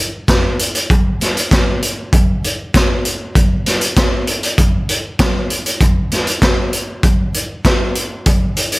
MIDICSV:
0, 0, Header, 1, 2, 480
1, 0, Start_track
1, 0, Tempo, 614125
1, 702, Time_signature, 4, 2, 24, 8
1, 6872, End_track
2, 0, Start_track
2, 0, Title_t, "Drums"
2, 219, Note_on_c, 9, 42, 60
2, 220, Note_on_c, 9, 36, 93
2, 227, Note_on_c, 9, 38, 88
2, 297, Note_off_c, 9, 42, 0
2, 299, Note_off_c, 9, 36, 0
2, 305, Note_off_c, 9, 38, 0
2, 463, Note_on_c, 9, 42, 68
2, 541, Note_off_c, 9, 42, 0
2, 584, Note_on_c, 9, 42, 63
2, 662, Note_off_c, 9, 42, 0
2, 703, Note_on_c, 9, 36, 110
2, 707, Note_on_c, 9, 42, 57
2, 782, Note_off_c, 9, 36, 0
2, 785, Note_off_c, 9, 42, 0
2, 946, Note_on_c, 9, 42, 66
2, 954, Note_on_c, 9, 38, 35
2, 1024, Note_off_c, 9, 42, 0
2, 1032, Note_off_c, 9, 38, 0
2, 1069, Note_on_c, 9, 42, 58
2, 1147, Note_off_c, 9, 42, 0
2, 1183, Note_on_c, 9, 36, 97
2, 1185, Note_on_c, 9, 42, 52
2, 1193, Note_on_c, 9, 38, 88
2, 1261, Note_off_c, 9, 36, 0
2, 1264, Note_off_c, 9, 42, 0
2, 1271, Note_off_c, 9, 38, 0
2, 1426, Note_on_c, 9, 42, 63
2, 1504, Note_off_c, 9, 42, 0
2, 1663, Note_on_c, 9, 36, 110
2, 1664, Note_on_c, 9, 42, 63
2, 1741, Note_off_c, 9, 36, 0
2, 1742, Note_off_c, 9, 42, 0
2, 1909, Note_on_c, 9, 42, 63
2, 1987, Note_off_c, 9, 42, 0
2, 2144, Note_on_c, 9, 36, 104
2, 2147, Note_on_c, 9, 42, 63
2, 2155, Note_on_c, 9, 38, 90
2, 2222, Note_off_c, 9, 36, 0
2, 2226, Note_off_c, 9, 42, 0
2, 2233, Note_off_c, 9, 38, 0
2, 2383, Note_on_c, 9, 42, 68
2, 2461, Note_off_c, 9, 42, 0
2, 2621, Note_on_c, 9, 36, 99
2, 2622, Note_on_c, 9, 42, 68
2, 2700, Note_off_c, 9, 36, 0
2, 2700, Note_off_c, 9, 42, 0
2, 2862, Note_on_c, 9, 42, 74
2, 2869, Note_on_c, 9, 38, 33
2, 2940, Note_off_c, 9, 42, 0
2, 2948, Note_off_c, 9, 38, 0
2, 2978, Note_on_c, 9, 42, 68
2, 3056, Note_off_c, 9, 42, 0
2, 3099, Note_on_c, 9, 42, 67
2, 3100, Note_on_c, 9, 36, 98
2, 3107, Note_on_c, 9, 38, 101
2, 3177, Note_off_c, 9, 42, 0
2, 3178, Note_off_c, 9, 36, 0
2, 3185, Note_off_c, 9, 38, 0
2, 3339, Note_on_c, 9, 42, 76
2, 3417, Note_off_c, 9, 42, 0
2, 3462, Note_on_c, 9, 42, 71
2, 3540, Note_off_c, 9, 42, 0
2, 3580, Note_on_c, 9, 36, 108
2, 3580, Note_on_c, 9, 42, 69
2, 3658, Note_off_c, 9, 36, 0
2, 3658, Note_off_c, 9, 42, 0
2, 3821, Note_on_c, 9, 42, 72
2, 3899, Note_off_c, 9, 42, 0
2, 4056, Note_on_c, 9, 42, 64
2, 4058, Note_on_c, 9, 36, 98
2, 4063, Note_on_c, 9, 38, 100
2, 4134, Note_off_c, 9, 42, 0
2, 4137, Note_off_c, 9, 36, 0
2, 4142, Note_off_c, 9, 38, 0
2, 4299, Note_on_c, 9, 42, 66
2, 4378, Note_off_c, 9, 42, 0
2, 4422, Note_on_c, 9, 42, 63
2, 4500, Note_off_c, 9, 42, 0
2, 4537, Note_on_c, 9, 42, 65
2, 4538, Note_on_c, 9, 36, 110
2, 4616, Note_off_c, 9, 36, 0
2, 4616, Note_off_c, 9, 42, 0
2, 4780, Note_on_c, 9, 42, 66
2, 4787, Note_on_c, 9, 38, 35
2, 4858, Note_off_c, 9, 42, 0
2, 4866, Note_off_c, 9, 38, 0
2, 4900, Note_on_c, 9, 42, 64
2, 4978, Note_off_c, 9, 42, 0
2, 5017, Note_on_c, 9, 36, 92
2, 5017, Note_on_c, 9, 42, 54
2, 5024, Note_on_c, 9, 38, 98
2, 5095, Note_off_c, 9, 36, 0
2, 5095, Note_off_c, 9, 42, 0
2, 5103, Note_off_c, 9, 38, 0
2, 5258, Note_on_c, 9, 42, 65
2, 5336, Note_off_c, 9, 42, 0
2, 5497, Note_on_c, 9, 36, 113
2, 5498, Note_on_c, 9, 42, 67
2, 5575, Note_off_c, 9, 36, 0
2, 5577, Note_off_c, 9, 42, 0
2, 5740, Note_on_c, 9, 42, 69
2, 5818, Note_off_c, 9, 42, 0
2, 5976, Note_on_c, 9, 42, 61
2, 5977, Note_on_c, 9, 36, 94
2, 5984, Note_on_c, 9, 38, 105
2, 6054, Note_off_c, 9, 42, 0
2, 6055, Note_off_c, 9, 36, 0
2, 6062, Note_off_c, 9, 38, 0
2, 6216, Note_on_c, 9, 42, 69
2, 6294, Note_off_c, 9, 42, 0
2, 6454, Note_on_c, 9, 42, 73
2, 6457, Note_on_c, 9, 36, 109
2, 6532, Note_off_c, 9, 42, 0
2, 6536, Note_off_c, 9, 36, 0
2, 6695, Note_on_c, 9, 42, 73
2, 6773, Note_off_c, 9, 42, 0
2, 6814, Note_on_c, 9, 42, 69
2, 6872, Note_off_c, 9, 42, 0
2, 6872, End_track
0, 0, End_of_file